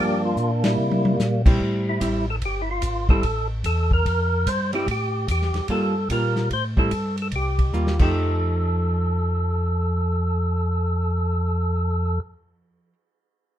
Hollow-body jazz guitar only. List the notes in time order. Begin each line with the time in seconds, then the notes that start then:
Already playing: F3 A#3 D4
1.46 G3 C4 E4
2.00 G3 C4 E4
3.09 G3 C4 E4
4.73 G3 C4 E4
5.70 G3 A#3 F4 A4
6.11 G3 A#3 F4
6.77 G3 C4 E4
7.73 G3 A#3 F4
7.99 F3 A3 D#4 G4